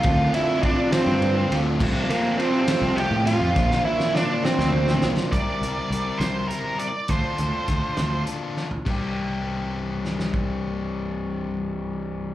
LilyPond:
<<
  \new Staff \with { instrumentName = "String machine" } { \time 6/8 \key c \mixolydian \tempo 4. = 68 <f' d'' c'''>2. | <g' f'' a''>2. | <bes' d'' c'''>2. | r2. |
r2. | r2. | r2. | }
  \new Staff \with { instrumentName = "Lead electric guitar" } { \time 6/8 \key c \mixolydian f'8 e'8 d'8 c'4 r8 | r8 bes8 c'4 g'8 f'8~ | f'8 e'8 d'8 c'4 r8 | d''4. c''8 bes'8 d''8 |
c''2 r4 | r2. | r2. | }
  \new Staff \with { instrumentName = "Clean electric guitar" } { \time 6/8 \key c \mixolydian <d c' f' a'>8 <d c' f' a'>8 <d c' f' a'>8 <d c' f' a'>4 <d c' f' a'>8 | <c f g c' f' a'>8 <c f g c' f' a'>8 <c f g c' f' a'>8 <c f g c' f' a'>4 <c f g c' f' a'>8 | <bes d' f' c''>8 <bes d' f' c''>8 <bes d' f' c''>8 <bes d' f' c''>4 <bes d' f' c''>8 | r2. |
r2. | r2. | r2. | }
  \new Staff \with { instrumentName = "Overdriven electric guitar" } { \time 6/8 \key c \mixolydian <d a d' f'>8 <d a d' f'>8 <d a d' f'>8 <d a d' f'>4 <d a d' f'>8 | <c f a c' f'>8 <c f a c' f'>8 <c f a c' f'>8 <c f a c' f'>4 <c f a c' f'>8 | <bes, d bes d' f'>8 <bes, d bes d' f'>8 <bes, d bes d' f'>8 <bes, d bes d' f'>4 <bes, d bes d' f'>8 | <g c' e' bes'>8 <g c' e' bes'>8 <g c' e' bes'>8 <g c' e' bes'>8 <g c' e' bes'>8 r8 |
<d d' f' a'>8 <d d' f' a'>8 <d d' f' a'>8 <d d' f' a'>8 <d d' f' a'>8 r8 | <c e g c' g'>2.~ | <c e g c' g'>2. | }
  \new Staff \with { instrumentName = "Picked electric bass" } { \clef bass \time 6/8 \key c \mixolydian d,8 r4 r16 g,16 g,8 d,8 | c,8 r4 r16 c,8 a,8 f,16 | bes,,8 r4 r16 d,16 d,8 b,,16 r16 | c,16 r16 c,16 r16 c,16 r16 c,8 r4 |
d,16 r16 d,16 r16 d,16 r16 d,8 r4 | c,2.~ | c,2. | }
  \new DrumStaff \with { instrumentName = "Drums" } \drummode { \time 6/8 <bd cymr>8 cymr8 <bd cymr>8 <cymr sn>8 cymr8 cymr8 | <cymc bd>8 cymr8 cymr8 <cymr sn>8 cymr8 cymr8 | <bd sn>16 sn8 sn16 sn8 sn16 sn8 sn16 sn16 sn16 | <hh bd>8 hh8 hh8 <hh sn>8 hh8 hh8 |
<hh bd>8 hh8 <hh bd>8 <hh sn>8 hh8 sn16 tomfh16 | <cymc bd>4. r8 sn16 sn16 bd8 | r4. r4. | }
>>